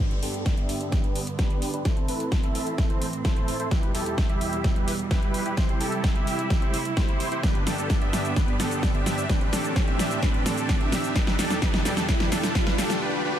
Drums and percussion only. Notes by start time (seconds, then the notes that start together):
0.11 closed hi-hat
0.23 open hi-hat
0.34 closed hi-hat
0.46 kick, snare, closed hi-hat
0.57 closed hi-hat
0.69 open hi-hat
0.81 closed hi-hat
0.92 kick, snare, closed hi-hat
1.04 closed hi-hat
1.16 open hi-hat
1.27 closed hi-hat
1.39 kick, snare, closed hi-hat
1.50 closed hi-hat
1.62 open hi-hat
1.74 closed hi-hat
1.85 kick, snare, closed hi-hat
1.97 closed hi-hat
2.08 open hi-hat
2.20 closed hi-hat
2.32 kick, snare, closed hi-hat
2.43 closed hi-hat
2.55 open hi-hat
2.67 closed hi-hat
2.78 kick, snare, closed hi-hat
2.90 closed hi-hat
3.02 open hi-hat
3.13 closed hi-hat
3.25 kick, snare, closed hi-hat
3.36 closed hi-hat
3.48 open hi-hat
3.60 closed hi-hat
3.71 kick, snare, closed hi-hat
3.83 closed hi-hat
3.95 open hi-hat
4.06 closed hi-hat
4.18 kick, snare, closed hi-hat
4.29 closed hi-hat
4.41 open hi-hat
4.53 closed hi-hat
4.64 kick, snare, closed hi-hat
4.76 closed hi-hat
4.88 open hi-hat
4.99 closed hi-hat
5.11 kick, snare, closed hi-hat
5.23 closed hi-hat
5.34 open hi-hat
5.46 closed hi-hat
5.57 kick, snare, closed hi-hat
5.69 closed hi-hat
5.81 open hi-hat
5.92 closed hi-hat
6.04 kick, snare, closed hi-hat
6.16 closed hi-hat
6.27 open hi-hat
6.39 closed hi-hat
6.50 kick, snare, closed hi-hat
6.62 closed hi-hat
6.74 open hi-hat
6.85 closed hi-hat
6.97 kick, snare, closed hi-hat
7.09 closed hi-hat
7.20 open hi-hat
7.32 closed hi-hat
7.43 kick, snare, closed hi-hat, shaker
7.55 closed hi-hat
7.67 snare, open hi-hat, shaker
7.78 closed hi-hat, shaker
7.90 kick, snare, closed hi-hat, shaker
8.02 closed hi-hat
8.13 snare, open hi-hat, shaker
8.25 closed hi-hat, shaker
8.36 kick, snare, closed hi-hat, shaker
8.48 closed hi-hat
8.60 snare, open hi-hat, shaker
8.71 closed hi-hat, shaker
8.83 kick, snare, closed hi-hat, shaker
8.95 closed hi-hat
9.06 snare, open hi-hat, shaker
9.18 closed hi-hat, shaker
9.29 kick, snare, closed hi-hat, shaker
9.41 closed hi-hat
9.53 snare, open hi-hat, shaker
9.64 closed hi-hat, shaker
9.76 kick, snare, closed hi-hat, shaker
9.88 closed hi-hat
9.99 snare, open hi-hat, shaker
10.11 closed hi-hat, shaker
10.23 kick, snare, closed hi-hat, shaker
10.34 closed hi-hat
10.46 snare, open hi-hat, shaker
10.57 closed hi-hat, shaker
10.69 kick, snare, closed hi-hat, shaker
10.81 closed hi-hat
10.92 snare, open hi-hat, shaker
11.04 closed hi-hat, shaker
11.16 kick, snare, closed hi-hat, shaker
11.27 snare, closed hi-hat
11.39 snare, open hi-hat, shaker
11.50 snare, closed hi-hat, shaker
11.62 kick, snare, closed hi-hat, shaker
11.74 snare, closed hi-hat
11.85 snare, open hi-hat, shaker
11.97 snare, closed hi-hat, shaker
12.09 kick, snare, closed hi-hat, shaker
12.20 snare, closed hi-hat
12.32 snare, open hi-hat, shaker
12.44 snare, closed hi-hat, shaker
12.55 kick, snare, closed hi-hat, shaker
12.67 snare, closed hi-hat
12.78 snare, open hi-hat, shaker
12.90 snare, closed hi-hat, shaker